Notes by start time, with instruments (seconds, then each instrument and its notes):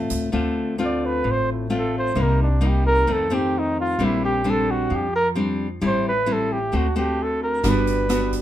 Already playing: nylon-string guitar A2 A3 C4 F4
0.10 upright bass D2, closed hi-hat
0.32 upright bass D2, nylon-string guitar D3 A3 C4 F4
0.78 nylon-string guitar A3 C4 F4
0.85 flugelhorn D5
1.06 flugelhorn B4
1.24 upright bass A1, nylon-string guitar A2
1.31 flugelhorn C5
1.52 flugelhorn E4
1.70 nylon-string guitar A3 C4 F4
1.77 flugelhorn A4
1.98 flugelhorn C5
2.15 upright bass C2, nylon-string guitar C3 G3 A#3 D#4
2.22 flugelhorn A#4
2.42 flugelhorn D4
2.61 nylon-string guitar G3 A#3 D#4
2.68 flugelhorn G4
2.87 flugelhorn A#4
3.07 upright bass F2, nylon-string guitar F2 D#3 A3 C4
3.12 flugelhorn A4
3.30 nylon-string guitar D#3 A3 C4, flugelhorn G4
3.59 flugelhorn D#4
3.80 flugelhorn F4
3.99 upright bass A#1, nylon-string guitar A#2 G3 C4 D4
4.04 flugelhorn E4
4.25 flugelhorn G4
4.44 nylon-string guitar G3 C4 D4
4.50 flugelhorn A4
4.71 flugelhorn F#4
4.90 upright bass F2, nylon-string guitar F3
4.95 flugelhorn G4
5.16 flugelhorn A#4
5.35 nylon-string guitar G3 C4 D4
5.81 upright bass A1, nylon-string guitar A2 G3 C4 E4
5.87 flugelhorn C5
6.09 flugelhorn B4
6.26 nylon-string guitar G3 C4 E4
6.32 flugelhorn A4
6.52 flugelhorn G4
6.72 upright bass D2, nylon-string guitar D3 A3 C4 F#4
6.77 flugelhorn F#4
6.96 nylon-string guitar A3 C4 F#4, flugelhorn G4
7.22 flugelhorn A4
7.43 flugelhorn A#4
7.63 upright bass G1, nylon-string guitar G3 B3 D4 F#4, kick, cross-stick, closed hi-hat
7.69 flugelhorn B4
7.87 closed hi-hat
8.09 nylon-string guitar B3 D4 F#4, cross-stick, closed hi-hat
8.32 kick, closed hi-hat